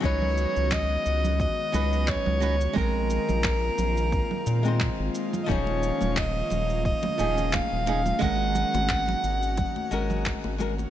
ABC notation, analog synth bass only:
X:1
M:4/4
L:1/16
Q:"Swing 16ths" 1/4=88
K:Ebm
V:1 name="Analog synth bass" clef=bass
D,,2 z D,,2 z D,,2 z2 D,,2 z D,,2 z | B,,,2 z B,,,2 z B,,,2 z2 B,,2 z A,,, z2 | E,,,2 z E,,,2 z E,,,2 z2 E,,,2 z E,,,2 z | A,,,2 z A,,,2 z A,,,2 z2 A,,,2 z A,,,2 z |]